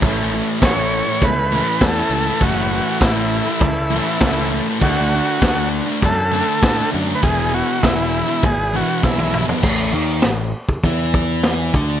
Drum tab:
CC |x---x---x---x---|x---x---x---x---|x---x---x---x---|x---x---x-------|
HH |----------------|----------------|----------------|----------------|
SD |----o-------o---|----o-------o---|----o-------o---|----o-------o---|
T1 |----------------|----------------|----------------|-------------o--|
T2 |----------------|----------------|----------------|--------------o-|
FT |----------------|----------------|----------------|---------------o|
BD |o---o---o---o---|o---o---o---o---|o---o---o---o---|o---o---o---o---|

CC |x---------------|
HH |----o---o---o---|
SD |----o-------o---|
T1 |----------------|
T2 |----------------|
FT |----------------|
BD |o------oo-o---o-|